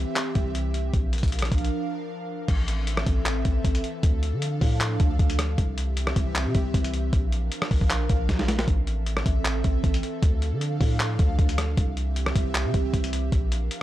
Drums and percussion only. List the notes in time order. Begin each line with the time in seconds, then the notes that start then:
0.16 clap, closed hi-hat
0.35 kick, closed hi-hat
0.55 closed hi-hat
0.74 closed hi-hat
0.94 kick, closed hi-hat
1.13 closed hi-hat
1.18 closed hi-hat
1.23 kick, closed hi-hat
1.28 closed hi-hat
1.32 closed hi-hat
1.39 cross-stick, closed hi-hat
1.45 closed hi-hat
1.52 kick, closed hi-hat
1.58 closed hi-hat
1.64 closed hi-hat
2.48 kick, closed hi-hat, crash
2.68 closed hi-hat
2.87 closed hi-hat
2.97 cross-stick
3.06 kick, closed hi-hat
3.26 clap, closed hi-hat
3.45 kick, closed hi-hat
3.64 kick, closed hi-hat
3.75 closed hi-hat
3.84 closed hi-hat
4.03 kick, closed hi-hat
4.23 closed hi-hat
4.42 closed hi-hat
4.61 kick, open hi-hat
4.81 clap, closed hi-hat
5.00 kick, closed hi-hat
5.19 kick, closed hi-hat
5.30 closed hi-hat
5.39 cross-stick, closed hi-hat
5.58 kick, closed hi-hat
5.78 closed hi-hat
5.97 closed hi-hat
6.07 cross-stick
6.16 kick, closed hi-hat
6.35 clap, closed hi-hat
6.55 kick, closed hi-hat
6.74 kick, closed hi-hat
6.84 closed hi-hat
6.94 closed hi-hat
7.13 kick, closed hi-hat
7.32 closed hi-hat
7.52 closed hi-hat
7.62 cross-stick
7.71 kick, open hi-hat
7.81 kick
7.90 clap, closed hi-hat
8.09 kick, closed hi-hat
8.29 kick, snare, closed hi-hat
8.39 snare
8.48 snare, closed hi-hat
8.59 snare, closed hi-hat
8.68 kick, closed hi-hat
8.87 closed hi-hat
9.06 closed hi-hat
9.17 cross-stick
9.26 kick, closed hi-hat
9.45 clap, closed hi-hat
9.64 kick, closed hi-hat
9.84 kick, closed hi-hat
9.94 closed hi-hat
10.03 closed hi-hat
10.23 kick, closed hi-hat
10.42 closed hi-hat
10.61 closed hi-hat
10.81 kick, open hi-hat
11.00 clap, closed hi-hat
11.19 kick, closed hi-hat
11.39 kick, closed hi-hat
11.49 closed hi-hat
11.58 cross-stick, closed hi-hat
11.77 kick, closed hi-hat
11.97 closed hi-hat
12.16 closed hi-hat
12.26 cross-stick
12.36 kick, closed hi-hat
12.55 clap, closed hi-hat
12.74 kick, closed hi-hat
12.94 kick, closed hi-hat
13.04 closed hi-hat
13.13 closed hi-hat
13.32 kick, closed hi-hat
13.52 closed hi-hat
13.71 closed hi-hat